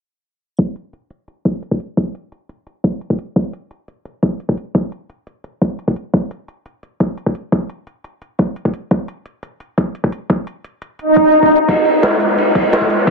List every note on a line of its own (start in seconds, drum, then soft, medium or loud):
0.59 kick loud
0.59 closed hi-hat medium
0.76 closed hi-hat medium
0.93 closed hi-hat medium
1.10 closed hi-hat medium
1.28 closed hi-hat medium
1.45 kick loud
1.45 closed hi-hat medium
1.63 closed hi-hat medium
1.71 kick medium
1.80 closed hi-hat medium
1.97 kick loud
1.97 closed hi-hat medium
2.15 closed hi-hat medium
2.32 closed hi-hat medium
2.49 closed hi-hat medium
2.67 closed hi-hat medium
2.84 kick loud
2.84 closed hi-hat medium
3.01 closed hi-hat medium
3.10 kick medium
3.19 closed hi-hat medium
3.36 kick loud
3.36 closed hi-hat medium
3.53 closed hi-hat medium
3.71 closed hi-hat medium
3.88 closed hi-hat medium
4.05 closed hi-hat medium
4.23 kick loud
4.23 closed hi-hat medium
4.40 closed hi-hat medium
4.49 kick medium
4.57 closed hi-hat medium
4.75 kick loud
4.75 closed hi-hat medium
4.92 closed hi-hat medium
5.10 closed hi-hat medium
5.27 closed hi-hat medium
5.44 closed hi-hat medium
5.62 kick loud
5.62 closed hi-hat medium
5.79 closed hi-hat medium
5.88 kick medium
5.96 closed hi-hat medium
6.14 kick loud
6.14 closed hi-hat medium
6.31 closed hi-hat medium
6.48 closed hi-hat medium
6.66 closed hi-hat medium
6.83 closed hi-hat medium
7.00 kick loud
7.00 closed hi-hat medium
7.18 closed hi-hat medium
7.26 kick medium
7.35 closed hi-hat medium
7.52 kick loud
7.52 closed hi-hat medium
7.70 closed hi-hat medium
7.87 closed hi-hat medium
8.04 closed hi-hat medium
8.22 closed hi-hat medium
8.39 kick medium
8.39 closed hi-hat medium
8.56 closed hi-hat medium
8.65 kick medium
8.74 closed hi-hat medium
8.91 kick loud
8.91 closed hi-hat medium
9.08 closed hi-hat medium
9.26 closed hi-hat medium
9.43 closed hi-hat medium
9.60 closed hi-hat medium
9.78 kick medium
9.78 closed hi-hat medium
9.95 closed hi-hat medium
10.04 kick medium
10.12 closed hi-hat medium
10.30 kick loud
10.30 closed hi-hat medium
10.47 closed hi-hat medium
10.64 closed hi-hat medium
10.82 closed hi-hat medium
10.99 closed hi-hat medium
10.99 swell medium
11.16 kick medium
11.16 closed hi-hat medium
11.34 closed hi-hat medium
11.43 kick medium
11.51 closed hi-hat medium
11.68 kick loud
11.68 closed hi-hat medium
11.85 closed hi-hat medium
12.03 snare loud
12.03 closed hi-hat medium
12.03 open hi-hat medium
12.20 closed hi-hat medium
12.28 closed hi-hat soft
12.38 closed hi-hat medium
12.55 kick loud
12.55 closed hi-hat medium
12.72 snare loud
12.72 closed hi-hat medium
12.81 kick medium
12.81 closed hi-hat soft
12.90 closed hi-hat medium
12.99 closed hi-hat soft
13.07 kick loud
13.07 closed hi-hat medium